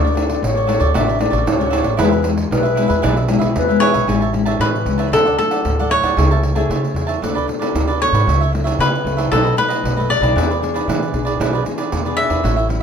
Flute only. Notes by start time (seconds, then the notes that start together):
Already playing: D5
0.44 C#5
0.95 E5
1.21 D5
1.48 C#5
2.00 B4
2.51 B4
3.04 D5
3.56 B4
12.44 E4